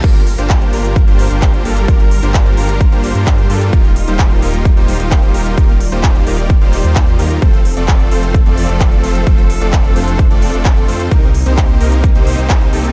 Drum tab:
CC |x---------------|----------------|----------------|----------------|
HH |xxoxxxoxxxoxxxox|xxoxxxoxxxoxxxox|xxoxxxoxxxoxxxox|xxoxxxoxxxoxxxox|
CP |----x-------x---|----x-------x---|----x-------x---|----x-------x---|
BD |o---o---o---o---|o---o---o---o---|o---o---o---o---|o---o---o---o---|

CC |----------------|----------------|----------------|
HH |xxoxxxoxxxoxxxox|xxoxxxoxxxoxxxox|xxoxxxoxxxoxxxox|
CP |----x-------x---|----x-------x---|----x-------x---|
BD |o---o---o---o---|o---o---o---o---|o---o---o---o---|